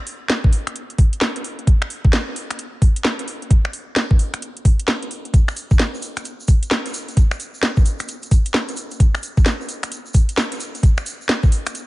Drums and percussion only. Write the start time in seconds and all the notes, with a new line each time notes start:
0.07 open hi-hat
0.30 snare
0.44 kick
0.53 open hi-hat
0.67 finger snap, closed hi-hat
0.76 closed hi-hat
0.90 closed hi-hat
0.98 kick, open hi-hat
1.13 closed hi-hat
1.21 snare
1.36 closed hi-hat
1.44 open hi-hat
1.59 closed hi-hat
1.67 kick, closed hi-hat
1.82 finger snap
1.90 open hi-hat
2.05 kick
2.13 snare
2.36 open hi-hat
2.51 finger snap, closed hi-hat
2.59 closed hi-hat
2.82 kick, open hi-hat
2.96 closed hi-hat
3.05 snare
3.19 closed hi-hat
3.28 open hi-hat
3.42 closed hi-hat
3.51 kick, closed hi-hat
3.65 finger snap
3.73 open hi-hat
3.96 snare
4.11 kick
4.19 open hi-hat
4.34 finger snap, closed hi-hat
4.42 closed hi-hat
4.57 closed hi-hat
4.65 kick, open hi-hat
4.79 closed hi-hat
4.88 snare
5.03 closed hi-hat
5.11 open hi-hat
5.25 closed hi-hat
5.34 kick, closed hi-hat, shaker
5.48 finger snap, shaker
5.57 open hi-hat, shaker
5.71 kick, shaker
5.79 snare, shaker
5.94 shaker
6.02 open hi-hat, shaker
6.16 finger snap, closed hi-hat, shaker
6.25 closed hi-hat, shaker
6.40 shaker
6.48 kick, open hi-hat, shaker
6.63 closed hi-hat, shaker
6.71 snare, shaker
6.86 closed hi-hat, shaker
6.94 open hi-hat, shaker
7.08 closed hi-hat, shaker
7.17 kick, closed hi-hat, shaker
7.31 finger snap, shaker
7.40 open hi-hat, shaker
7.54 shaker
7.63 snare, shaker
7.77 kick, shaker
7.85 open hi-hat, shaker
7.99 finger snap, closed hi-hat, shaker
8.08 closed hi-hat, shaker
8.23 closed hi-hat, shaker
8.31 kick, open hi-hat, shaker
8.45 closed hi-hat, shaker
8.54 snare, shaker
8.69 closed hi-hat, shaker
8.76 open hi-hat, shaker
8.91 closed hi-hat, shaker
9.00 kick, closed hi-hat, shaker
9.15 finger snap, shaker
9.23 open hi-hat, shaker
9.37 kick, shaker
9.46 snare, shaker
9.61 shaker
9.69 open hi-hat, shaker
9.83 finger snap, closed hi-hat, shaker
9.92 closed hi-hat, shaker
10.06 shaker
10.14 kick, open hi-hat, shaker
10.29 closed hi-hat, shaker
10.38 snare, shaker
10.52 closed hi-hat, shaker
10.60 open hi-hat, shaker
10.75 closed hi-hat, shaker
10.83 kick, closed hi-hat, shaker
10.97 finger snap, shaker
11.06 open hi-hat, shaker
11.21 shaker
11.29 snare, shaker
11.43 kick, shaker
11.52 open hi-hat, shaker
11.66 finger snap, closed hi-hat, shaker
11.75 closed hi-hat, shaker